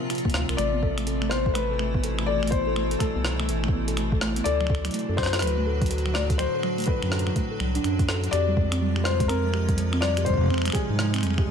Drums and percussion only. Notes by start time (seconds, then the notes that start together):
0.10 finger snap, closed hi-hat
0.15 closed hi-hat
0.18 closed hi-hat
0.25 kick
0.30 closed hi-hat
0.34 cross-stick
0.49 finger snap, closed hi-hat
0.58 finger snap, closed hi-hat
0.83 kick
0.98 finger snap, closed hi-hat
1.07 closed hi-hat
1.22 finger snap
1.31 cross-stick
1.46 kick
1.55 finger snap, closed hi-hat
1.79 finger snap
1.94 kick
2.04 closed hi-hat
2.19 finger snap
2.43 finger snap
2.47 closed hi-hat
2.52 kick, closed hi-hat
2.76 finger snap
2.91 closed hi-hat
3.00 finger snap, kick, closed hi-hat
3.25 cross-stick
3.40 finger snap
3.49 closed hi-hat
3.64 finger snap
3.68 kick
3.88 closed hi-hat
3.97 finger snap, closed hi-hat
4.12 kick
4.21 finger snap, cross-stick
4.36 closed hi-hat
4.46 closed hi-hat
4.61 finger snap
4.67 finger snap, kick
4.75 finger snap
4.85 finger snap, closed hi-hat
4.91 closed hi-hat
4.94 closed hi-hat
4.99 closed hi-hat
5.18 finger snap, kick, cross-stick
5.23 cross-stick
5.26 cross-stick
5.33 cross-stick, closed hi-hat
5.39 finger snap, cross-stick, closed hi-hat
5.42 closed hi-hat
5.47 closed hi-hat
5.82 kick, closed hi-hat
5.86 closed hi-hat
5.91 closed hi-hat
5.98 closed hi-hat
6.06 finger snap
6.15 cross-stick
6.30 kick, closed hi-hat
6.39 finger snap, closed hi-hat
6.63 finger snap
6.78 closed hi-hat
6.80 closed hi-hat
6.82 closed hi-hat
6.84 closed hi-hat
6.86 kick, closed hi-hat
7.02 finger snap
7.12 cross-stick
7.19 closed hi-hat
7.27 finger snap
7.36 kick, closed hi-hat
7.60 finger snap
7.75 closed hi-hat
7.84 finger snap, closed hi-hat
7.99 kick, closed hi-hat
8.09 cross-stick
8.24 closed hi-hat
8.33 finger snap, closed hi-hat
8.57 kick
8.72 finger snap, closed hi-hat
8.96 finger snap
9.05 cross-stick
9.20 kick, closed hi-hat
9.29 finger snap, closed hi-hat
9.54 finger snap
9.69 kick, closed hi-hat
9.78 closed hi-hat
9.93 finger snap
10.02 cross-stick
10.17 finger snap, closed hi-hat
10.26 kick, closed hi-hat
10.30 kick
10.34 kick
10.38 kick
10.41 kick
10.44 kick
10.46 kick
10.48 finger snap, kick
10.54 finger snap
10.58 finger snap
10.62 finger snap
10.65 finger snap, closed hi-hat
10.68 finger snap
10.70 finger snap
10.72 finger snap, kick
10.75 finger snap, closed hi-hat
10.99 cross-stick
11.14 finger snap, closed hi-hat
11.16 finger snap
11.18 finger snap
11.21 finger snap
11.23 finger snap, closed hi-hat
11.27 finger snap
11.30 finger snap
11.34 finger snap
11.38 finger snap, kick